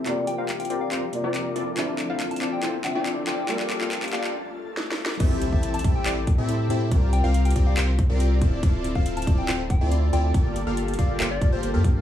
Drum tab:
CC |------------------------------------------------------------------------------------------------|------------------------------------------------------------------------------------------------|------------------------------------------------------------------------------------------------|x-----------------------------------------------------------------------------------------------|
HH |x-----------x-----------x-----x--x--x-----------x-----------x-----------x-----------x-----------|x-----------x-----------x-----x--x--------------x-----------x-----------x-----------x-----------|x-----------x-----------x-----x--x--x-----------------------------------------------------------|x-----------x-----------x-----x--x--x-----------x-----------x-----------x-----------x-----------|
CP |x-----------------------x-----------------------x-----------------------x-----------------------|x-----------x-----------x-----------x-----------x-----------x-----------x-----------x-----------|x-----x-----x-----x-----x-----x-----x-----x-----------------------------------------------------|------------------------------------------------x-----------------------------------------------|
SD |------------------------------------------------------------------------------------------------|------------------------------------------------------------------------------------------------|------------------------------------------------------------------------o-------o-------o-------|------------------------------------------------------------------------------------------------|
BD |------------------------------------------------------------------------------------------------|------------------------------------------------------------------------------------------------|------------------------------------------------------------------------------------------------|o-----------------o-----------------o-----------------------o-----------------------------------|

CC |------------------------------------------------------------------------------------------------|------------------------------------------------------------------------------------------------|------------------------------------------------------------------------------------------------|
HH |x-----------x-----------x-----x--x--x-----------x-----------x-----------x-----------x-----------|x-----------x-----------x-----x--x--x-----------x-----------x-----------x-----------x-----------|x-----------x-----------x-----x--x--x-----------x-----------x-----------x-----------x-----------|
CP |------------------------------------------------x-----------------------------------------------|------------------------------------------------x-----------------------------------------------|------------------------------------------------x-----------------------------------------------|
SD |------------------------------------------------------------------------------------------------|------------------------------------------------------------------------------------------------|------------------------------------------------------------------------------------------------|
BD |o-----------------------------------o-----------------------o-----------------------o-----------|o-----------------o-----------------o-----------------------o-----------------------------------|o-----------------------------------o-----------------------o-----------------------o-----------|